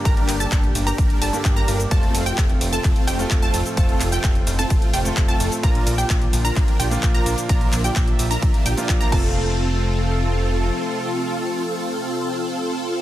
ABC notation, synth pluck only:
X:1
M:4/4
L:1/16
Q:1/4=129
K:F
V:1 name="Synth pluck"
b3 a2 z2 b3 a3 b2 z | a3 g2 z2 a3 g3 a2 z | a3 g2 z2 a3 g3 a2 z | b3 g2 z2 b3 g3 b2 z |
b3 g2 z2 b3 g3 b a2- | a16- | a16 |]